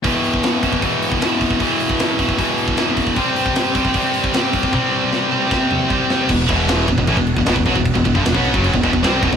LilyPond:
<<
  \new Staff \with { instrumentName = "Distorted electric guitar" } { \clef bass \time 4/4 \key e \minor \tempo 4 = 153 <e, b, e>2 <e, b, e>2 | <e, b, e>2 <e, b, e>2 | <c g c'>2 <c g c'>2 | <c g c'>2 <c g c'>2 |
<e, b,>8 <e, b, e>4 <e, b,>16 <e, b,>16 <a, e>16 <e, b,>8 <e, b,>16 <e, b,>16 <e, b,>16 <b, fis>16 <e, b,>16~ | <e, b,>16 <e, b,>16 <e, b,>16 <g, d>16 <e, b,>16 <b, fis b>8 <fis, cis fis>8 <e, b,>16 <e, b,>16 <e, b,>16 <c g c'>8 <e, b,>16 <e, b,>16 | }
  \new Staff \with { instrumentName = "Distorted electric guitar" } { \clef bass \time 4/4 \key e \minor <e, b, e>4. <e, b, e>4. <e, b, e>4 | <e, b, e>4. <e, b, e>4. <e, b, e>4 | <c g c'>4. <c g c'>4. <c g c'>4 | <c g c'>4. <c g c'>4. <c g c'>4 |
<e, b,>8 <e, b, e>4 <e, b,>16 <e, b,>16 <a, e>16 <e, b,>8 <e, b,>16 <e, b,>16 <e, b,>16 <b, fis>16 <e, b,>16~ | <e, b,>16 <e, b,>16 <e, b,>16 <g, d>16 <e, b,>16 <b, fis b>8 <fis, cis fis>8 <e, b,>16 <e, b,>16 <e, b,>16 <c g c'>8 <e, b,>16 <e, b,>16 | }
  \new Staff \with { instrumentName = "Fingered electric bass" } { \clef bass \time 4/4 \key e \minor r1 | r1 | r1 | r1 |
e,,8 e,,4 e,,16 e,,16 a,,16 e,,8 e,,16 e,,16 e,,16 b,,16 e,,16~ | e,,16 e,,16 e,,16 g,,16 e,,16 b,,8 fis,,8 e,,16 e,,16 e,,16 c,8 e,,16 e,,16 | }
  \new DrumStaff \with { instrumentName = "Drums" } \drummode { \time 4/4 <hho bd>8 hho16 bd16 <hho sn>8 <hho bd>16 bd16 <hho bd>8 hho16 bd16 <hho sn>8 <hho bd>16 bd16 | <hho bd>8 hho16 bd16 <hho sn>8 <hho bd>16 bd16 <hho bd>8 hho16 bd16 <hho sn>8 <hho bd>16 bd16 | <hho bd>8 hho16 bd16 <hho sn>8 <hho bd>16 bd16 <hho bd>8 hho16 bd16 <hho sn>8 <hho bd>16 bd16 | <bd tommh>4 sn4 <bd sn>8 toml8 bd8 sn8 |
<cymc bd>8 <cymc bd>8 <cymc sn>8 <cymc bd>16 bd16 <cymc bd>16 bd16 cymc16 bd16 <cymc sn>16 bd16 <cymc bd>16 bd16 | <cymc bd>16 bd16 <cymc bd>16 bd16 <cymc sn>16 bd16 cymc16 bd16 cymc16 bd16 <cymc bd>16 bd16 <cymc sn>8 <cymc bd>16 bd16 | }
>>